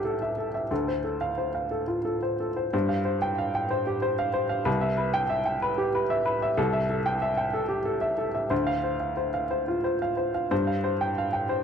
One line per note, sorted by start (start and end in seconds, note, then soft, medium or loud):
0.00 0.66 C2 medium
0.00 0.14 G4 soft
0.00 0.05 A4 medium
0.00 0.22 E5 soft
0.00 0.73 G5 medium
0.05 0.31 A4 soft
0.22 0.47 E5 soft
0.38 0.64 A4 soft
0.54 0.70 E5 soft
0.71 2.69 D2 medium
0.71 0.97 A4 soft
0.88 1.15 C5 soft
1.04 1.31 A4 soft
1.21 1.48 F5 soft
1.38 1.65 C5 soft
1.55 1.81 F5 soft
1.71 1.98 A4 soft
1.88 2.15 F4 soft
2.05 2.32 A4 soft
2.22 2.50 C5 soft
2.40 2.67 A4 soft
2.56 2.72 C5 soft
2.73 4.63 G2 medium
2.73 2.99 C5 soft
2.89 3.15 F5 soft
3.05 3.32 C5 soft
3.22 3.48 G5 medium
3.38 3.64 F5 soft
3.55 3.81 G5 medium
3.71 3.96 C5 medium
3.87 4.12 G4 medium
4.02 4.28 C5 medium
4.19 4.44 F5 medium
4.33 4.60 C5 medium
4.49 4.66 F5 medium
4.65 6.53 C2 medium
4.65 4.91 B4 medium
4.81 5.07 E5 medium
4.97 5.23 B4 medium
5.14 5.39 G5 medium
5.29 5.55 E5 medium
5.45 5.71 G5 medium
5.62 5.87 B4 medium
5.78 6.03 G4 medium
5.95 6.20 B4 medium
6.10 6.35 E5 medium
6.26 6.51 B4 medium
6.42 6.58 E5 medium
6.57 8.47 C2 medium
6.57 6.83 A4 medium
6.73 6.99 E5 medium
6.90 7.15 A4 medium
7.06 7.31 G5 medium
7.22 7.47 E5 medium
7.37 7.63 G5 medium
7.53 7.79 A4 medium
7.69 7.95 G4 soft
7.85 8.11 A4 soft
8.01 8.28 E5 soft
8.18 8.45 A4 medium
8.35 8.51 E5 soft
8.50 10.47 D2 medium
8.50 8.77 C5 medium
8.67 8.94 F5 medium
8.84 9.11 C5 soft
9.00 9.27 F5 soft
9.17 9.44 C5 soft
9.34 9.61 F5 soft
9.51 9.77 C5 soft
9.68 9.94 F4 soft
9.84 10.11 C5 soft
10.02 10.28 F5 soft
10.17 10.44 C5 soft
10.34 10.51 F5 soft
10.51 11.63 G2 medium
10.51 10.77 C5 medium
10.67 10.94 F5 soft
10.84 11.10 C5 medium
11.01 11.26 G5 medium
11.18 11.43 F5 soft
11.33 11.58 G5 soft
11.49 11.63 C5 medium